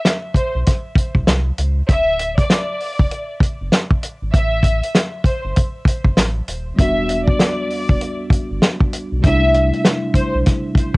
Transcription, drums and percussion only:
0.05 snare loud
0.05 snare medium
0.05 closed hi-hat loud
0.34 kick medium
0.34 closed hi-hat medium
0.67 kick medium
0.67 snare soft
0.67 closed hi-hat medium
0.95 kick loud
0.95 closed hi-hat medium
1.15 kick medium
1.27 snare loud
1.27 snare medium
1.27 closed hi-hat medium
1.58 closed hi-hat medium
1.89 kick loud
1.89 closed hi-hat medium
2.19 closed hi-hat medium
2.38 kick medium
2.38 closed hi-hat medium
2.50 snare loud
2.50 snare medium
2.50 closed hi-hat loud
2.80 open hi-hat soft
2.99 kick loud
3.11 closed hi-hat medium
3.40 kick loud
3.40 closed hi-hat medium
3.72 snare loud
3.72 snare medium
3.72 closed hi-hat medium
3.90 kick loud
4.03 closed hi-hat medium
4.34 kick loud
4.34 closed hi-hat medium
4.63 kick medium
4.63 closed hi-hat medium
4.83 closed hi-hat medium
4.95 snare loud
4.95 snare medium
4.95 closed hi-hat loud
5.24 kick medium
5.24 closed hi-hat medium
5.56 kick medium
5.56 closed hi-hat medium
5.85 kick loud
5.85 closed hi-hat medium
6.05 kick medium
6.17 snare loud
6.17 snare medium
6.17 closed hi-hat medium
6.48 closed hi-hat medium
6.79 kick loud
6.79 closed hi-hat medium
7.09 closed hi-hat medium
7.28 kick medium
7.40 snare loud
7.40 snare medium
7.40 closed hi-hat loud
7.70 open hi-hat soft
7.89 kick loud
8.01 closed hi-hat medium
8.30 kick medium
8.30 closed hi-hat medium
8.62 snare loud
8.62 snare medium
8.62 closed hi-hat medium
8.80 kick loud
8.93 closed hi-hat medium
9.24 kick loud
9.24 closed hi-hat medium
9.54 closed hi-hat medium
9.73 closed hi-hat medium
9.85 snare loud
9.85 snare medium
9.85 closed hi-hat loud
10.14 kick medium
10.14 closed hi-hat medium
10.46 kick loud
10.46 snare soft
10.46 closed hi-hat medium
10.75 kick medium
10.75 closed hi-hat medium

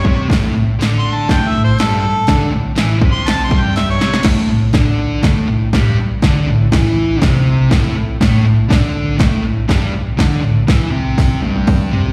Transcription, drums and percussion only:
0.05 kick loud
0.30 kick loud
0.30 snare loud
0.30 open hi-hat medium
0.81 snare loud
0.81 open hi-hat medium
1.29 kick loud
1.29 snare loud
1.29 open hi-hat medium
1.79 snare loud
1.79 open hi-hat medium
2.27 kick loud
2.27 snare loud
2.27 open hi-hat medium
2.76 snare loud
2.76 open hi-hat medium
3.01 kick loud
3.27 snare loud
3.27 open hi-hat medium
3.51 kick loud
3.76 snare medium
3.76 open hi-hat medium
4.01 snare loud
4.14 snare medium
4.23 kick loud
4.23 snare loud
4.23 open hi-hat medium
4.23 crash loud
4.73 kick loud
4.73 snare loud
4.73 open hi-hat medium
5.23 kick loud
5.23 snare loud
5.23 open hi-hat medium
5.73 kick loud
5.73 snare loud
5.73 open hi-hat medium
6.22 kick loud
6.22 snare loud
6.22 open hi-hat medium
6.72 kick loud
6.72 snare loud
6.72 open hi-hat medium
7.22 kick loud
7.22 snare loud
7.22 open hi-hat medium
7.71 kick loud
7.71 snare loud
7.71 open hi-hat medium
8.21 kick loud
8.21 snare loud
8.21 open hi-hat medium
8.70 kick loud
8.70 snare loud
8.70 open hi-hat medium
9.19 kick loud
9.19 snare loud
9.19 open hi-hat medium
9.69 kick loud
9.69 snare loud
9.69 open hi-hat medium
10.19 kick loud
10.19 snare loud
10.19 open hi-hat medium
10.68 kick loud
10.68 snare loud
10.68 open hi-hat medium
11.18 kick loud
11.18 snare medium
11.18 open hi-hat medium
11.43 high tom medium
11.56 high tom medium
11.67 kick loud
11.67 open hi-hat medium
11.67 mid tom medium
11.93 floor tom loud
12.05 floor tom medium

